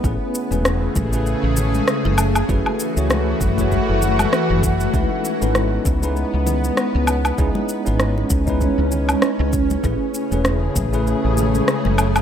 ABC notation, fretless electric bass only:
X:1
M:4/4
L:1/16
Q:"Swing 16ths" 1/4=98
K:Alyd
V:1 name="Fretless electric bass" clef=bass
A,,, z2 E,,,2 z A,,,2 z A,,,2 z2 F,,,2 z | F,,, z2 C,,2 z F,,,2 z F,,,2 z2 F,,,2 z | C,, z2 G,,,2 z C,,2 z C,,2 z2 C,,2 z | C,, z2 G,,,2 z C,,2 z C,,2 z2 C,,2 z |
A,,, z2 E,,,2 z A,,,2 z A,,,2 z2 F,,,2 z |]